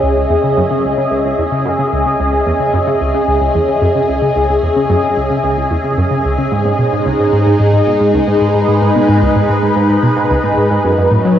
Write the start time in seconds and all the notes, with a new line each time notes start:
Already playing: C#4 G#4 D#5 E5
0.03 C#2
0.17 C#2
0.30 E2
0.44 C#3
0.57 F#2
0.71 C#3
0.84 C#2
0.98 C#3
1.11 C#2
1.25 C#2
1.38 E2
1.52 C#3
1.66 F#2
1.79 C#3
1.93 C#2
2.06 C#3
2.20 C#2
2.33 C#2
2.47 E2
2.60 C#3
2.74 F#2
2.87 C#3
3.01 C#2
3.15 C#3
3.28 C#2
3.41 C#2
3.55 E2
3.68 C#3
3.82 F#2
3.95 C#3
4.09 C#2
4.22 C#3
4.36 C#2
4.50 C#2
4.63 E2
4.76 C#3
4.90 F#2
5.04 C#3
5.17 C#2
5.30 C#3
5.44 C#2
5.57 C#2
5.71 E2
5.84 C#3
5.98 F#2
6.11 C#3
6.25 C#2
6.38 C#3
6.52 G#2 G#3
6.65 G#2 D#4
6.79 B2
6.92 G#2
7.06 C#2
7.20 G#2
7.33 G#2
7.47 G#2
7.60 G#2
7.73 G#2
7.87 B2
8.00 G#2
8.14 C#2 B4
8.27 G#2
8.41 G#2
8.54 G#2
8.68 G#2
8.81 G#2
8.95 B2
9.09 G#2
9.22 C#2
9.36 G#2
9.49 G#2
9.63 G#2
9.76 G#2
9.90 G#2
10.03 B2
10.17 G#2
10.30 C#2
10.44 G#2
10.57 G#2
10.71 G#2
10.85 F#2 F#3
10.97 F#2 C#4
11.12 A2
11.25 F#3